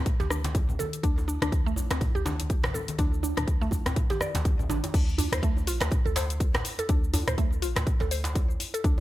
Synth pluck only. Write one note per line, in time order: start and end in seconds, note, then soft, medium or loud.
0.20 0.29 G4 loud
0.30 0.44 D4 medium
0.79 0.87 A4 medium
1.03 1.16 D4 loud
1.28 1.41 D4 medium
1.42 1.51 D4 loud
1.66 1.76 A3 loud
1.91 2.01 C4 medium
2.15 2.25 G4 medium
2.26 2.39 D4 medium
2.74 2.82 A4 medium
2.99 3.11 D4 loud
3.23 3.36 D4 medium
3.37 3.46 D4 loud
3.62 3.71 A3 loud
3.86 3.96 C4 medium
4.10 4.20 G4 loud
4.21 4.33 D5 medium
4.70 4.82 D4 medium
4.94 5.07 D4 medium
5.18 5.26 D4 medium
5.32 5.38 C5 medium
5.43 5.55 A3 loud
5.67 5.80 F4 medium
6.06 6.11 A4 medium
6.16 6.29 C5 medium
6.79 6.88 A4 medium
6.89 7.02 D4 medium
7.14 7.21 D4 medium
7.28 7.33 C5 medium
7.38 7.50 A3 loud
7.62 7.75 F4 medium
8.01 8.06 A4 medium
8.11 8.24 C5 medium
8.74 8.83 A4 medium
8.84 8.97 D4 medium